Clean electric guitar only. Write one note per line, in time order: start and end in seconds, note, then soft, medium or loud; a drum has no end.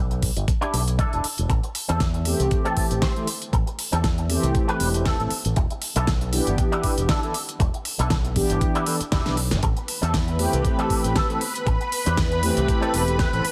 0.10 muted clean electric guitar stroke soft
0.47 muted clean electric guitar stroke soft
0.61 0.80 D4 loud
0.61 0.80 E4 medium
0.61 0.81 G4 loud
0.98 1.24 D4 medium
0.98 1.24 E4 medium
0.98 1.25 A4 medium
1.49 muted clean electric guitar stroke loud
1.63 muted clean electric guitar stroke soft
1.88 2.00 C4 medium
1.88 2.00 G4 medium
1.88 2.01 A4 medium
2.13 muted clean electric guitar stroke soft
2.51 muted clean electric guitar stroke soft
2.65 2.84 C4 loud
2.65 2.84 G4 medium
2.65 2.84 A4 loud
3.02 3.27 C4 medium
3.02 3.28 G4 medium
3.02 3.28 C5 medium
3.53 muted clean electric guitar stroke loud
3.66 muted clean electric guitar stroke soft
3.92 4.04 C4 medium
3.92 4.04 G4 medium
3.92 4.04 A4 medium
4.18 muted clean electric guitar stroke soft
4.54 muted clean electric guitar stroke soft
4.68 4.87 C4 loud
4.68 4.87 G4 medium
4.68 4.88 B4 loud
5.05 5.31 C4 medium
5.05 5.31 G4 medium
5.05 5.31 A4 medium
5.56 muted clean electric guitar stroke loud
5.71 muted clean electric guitar stroke soft
5.96 6.07 D4 medium
5.96 6.08 E4 medium
5.96 6.08 A4 medium
6.21 muted clean electric guitar stroke soft
6.58 muted clean electric guitar stroke soft
6.72 6.90 D4 loud
6.72 6.91 E4 loud
6.72 6.91 G4 loud
7.09 7.34 D4 medium
7.09 7.35 E4 medium
7.09 7.35 A4 medium
7.59 muted clean electric guitar stroke loud
7.74 muted clean electric guitar stroke soft
7.99 8.11 D4 medium
7.99 8.11 E4 medium
7.99 8.11 A4 medium
8.24 muted clean electric guitar stroke soft
8.61 muted clean electric guitar stroke soft
8.75 8.94 D4 loud
8.75 8.94 E4 loud
8.75 8.94 G4 loud
9.12 9.38 D4 medium
9.12 9.38 E4 medium
9.12 9.38 G4 medium
9.63 muted clean electric guitar stroke loud
9.76 muted clean electric guitar stroke soft
10.02 10.14 C4 medium
10.02 10.14 G4 medium
10.02 10.14 A4 medium
10.27 muted clean electric guitar stroke soft
10.64 muted clean electric guitar stroke soft
10.78 10.97 C4 loud
10.78 10.97 G4 loud
10.78 10.98 A4 loud
11.15 11.41 C4 medium
11.15 11.41 G4 medium
11.15 11.42 A4 medium
11.66 muted clean electric guitar stroke loud
11.80 muted clean electric guitar stroke soft
12.06 12.17 C4 medium
12.06 12.18 G4 medium
12.06 12.18 B4 medium
12.31 muted clean electric guitar stroke soft
12.68 muted clean electric guitar stroke soft
12.81 13.00 C4 loud
12.81 13.01 G4 loud
12.81 13.01 A4 loud
13.18 13.44 C4 medium
13.18 13.44 G4 medium
13.18 13.45 B4 medium